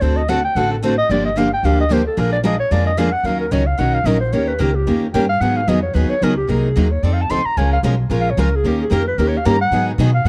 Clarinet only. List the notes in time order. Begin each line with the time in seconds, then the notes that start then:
0.02 C5
0.16 D#5
0.29 F#5
0.44 G5
0.56 F#5
0.72 A4
0.84 C5
0.98 D#5
1.11 D5
1.25 D#5
1.38 F5
1.53 G5
1.65 F5
1.80 D#5
1.93 C5
2.07 A4
2.19 A#4
2.33 D5
2.46 D#5
2.60 C#5
2.72 D5
2.87 D#5
2.98 F5
3.12 F#5
3.25 F5
3.40 A#4
3.52 C#5
3.66 F5
3.78 F#5
3.94 F5
4.06 D#5
4.20 C5
4.33 C#5
4.48 B4
4.61 A#4
4.75 G4
5.14 G5
5.29 F5
5.40 F#5
5.56 F5
5.69 D#5
5.82 C#5
5.94 B4
6.10 C#5
6.23 A#4
6.37 G4
6.49 G#4
6.91 C#5
7.03 D5
7.13 F5
7.21 A5
7.30 C6
7.46 A#5
7.57 G#5
7.73 F5
8.21 F5
8.30 C#5
8.40 A#4
8.55 G#4
8.67 G4
8.82 G#4
8.93 A#4
9.08 B4
9.19 A#4
9.28 C#5
9.37 F5
9.46 A#5
9.61 F#5
10.14 F5